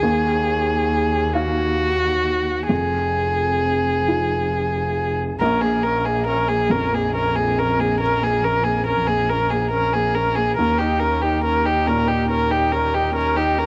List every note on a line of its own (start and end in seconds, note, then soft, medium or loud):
0.00 2.71 D#2 medium
0.00 2.66 D#2 medium
0.00 1.35 G#4 medium
1.33 2.66 D#4 soft
1.33 2.68 F#4 medium
1.33 2.66 F5 soft
2.69 5.40 F1 medium
2.69 5.36 F2 soft
2.69 5.16 G#4 soft
4.08 5.37 D#4 soft
4.08 5.37 F4 soft
5.40 10.60 A#1 medium
5.40 7.97 A#1 medium
5.40 5.65 C#4 medium
5.40 5.63 A#4 medium
5.62 5.86 A#3 medium
5.62 5.85 G#4 soft
5.84 6.07 C#4 soft
5.84 6.07 A#4 medium
6.05 6.27 A#3 medium
6.05 6.26 G#4 medium
6.27 6.50 C#4 medium
6.27 6.50 A#4 soft
6.49 6.73 A#3 soft
6.49 6.73 G#4 medium
6.70 10.58 F2 soft
6.70 6.94 C#4 medium
6.70 6.96 A#4 medium
6.92 7.13 A#3 medium
6.92 7.15 G#4 soft
7.14 7.37 C#4 soft
7.14 7.37 A#4 medium
7.36 7.59 A#3 medium
7.36 7.60 G#4 medium
7.58 7.80 C#4 medium
7.58 7.81 A#4 soft
7.79 8.00 A#3 medium
7.79 8.00 G#4 medium
8.00 8.24 C#4 medium
8.00 8.25 A#4 medium
8.22 8.44 A#3 medium
8.22 8.46 G#4 medium
8.43 8.66 C#4 medium
8.43 8.65 A#4 medium
8.64 8.86 A#3 soft
8.64 8.86 G#4 soft
8.87 9.10 C#4 soft
8.87 9.09 A#4 soft
9.07 9.32 A#3 soft
9.07 9.31 G#4 medium
9.29 9.53 C#4 medium
9.29 9.52 A#4 medium
9.50 9.73 A#3 soft
9.50 9.70 G#4 soft
9.71 9.97 C#4 medium
9.71 9.95 A#4 medium
9.93 10.18 A#3 soft
9.93 10.17 G#4 medium
10.15 10.39 C#4 medium
10.15 10.37 A#4 medium
10.35 10.58 A#3 medium
10.35 10.56 G#4 soft
10.57 13.66 D#2 medium
10.57 13.11 D#2 medium
10.57 10.82 C#4 medium
10.57 10.80 A#4 soft
10.79 11.04 D#4 medium
10.79 11.01 G4 medium
11.00 11.25 C#4 medium
11.00 11.23 A#4 medium
11.22 11.44 D#4 medium
11.22 11.44 G4 medium
11.44 11.67 C#4 medium
11.44 11.67 A#4 medium
11.66 11.89 D#4 medium
11.66 11.89 G4 medium
11.87 13.66 A#2 soft
11.87 12.09 C#4 medium
11.87 12.10 A#4 medium
12.08 12.28 D#4 medium
12.08 12.30 G4 soft
12.29 12.52 C#4 soft
12.29 12.53 A#4 medium
12.51 12.74 D#4 medium
12.51 12.74 G4 medium
12.72 12.95 C#4 medium
12.72 12.95 A#4 medium
12.94 13.14 D#4 medium
12.94 13.15 G4 medium
13.15 13.38 C#4 medium
13.15 13.38 A#4 medium
13.37 13.60 D#4 medium
13.37 13.60 G4 medium
13.58 13.66 C#4 medium
13.58 13.66 A#4 medium